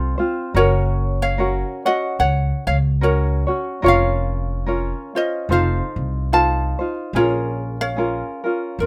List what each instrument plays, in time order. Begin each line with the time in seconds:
Already playing: upright bass C2, ukulele C4 F4 A4 C5 D#5
0.18 ukulele C4 F4 C5
0.54 upright bass F#1, ukulele C#4 F#4 A#4 C#5
1.22 ukulele C#5 F5
1.38 ukulele C#4 F#4 A#4 C#5
1.85 ukulele C#4 F#4 C#5 D#5 F#5
2.19 upright bass C#2, ukulele C#5 F#5
2.67 upright bass C#2, ukulele C#5 F5
3.01 ukulele C#4 F#4 A#4 C#5
3.47 ukulele C#4 F#4 C#5
3.82 upright bass F1, ukulele C#4 F4 A#4 C#5
3.88 ukulele F5
4.66 ukulele C#4 F4 A#4 C#5
5.15 ukulele C#4 F4 C5 D#5
5.49 upright bass F1, ukulele D#4 F4 A4 C5 F5
5.96 upright bass C2
6.32 ukulele D#4 F4 A4 C5 F5 A5
6.79 ukulele D#4 F4 C5
7.13 upright bass A#1, ukulele C#4 F4 G#4 A#4 C#5
7.81 ukulele C#5 F5
7.97 ukulele C#4 F4 G#4 A#4
8.44 ukulele C#4 F4 A#4
8.79 upright bass F2, ukulele F4 A#4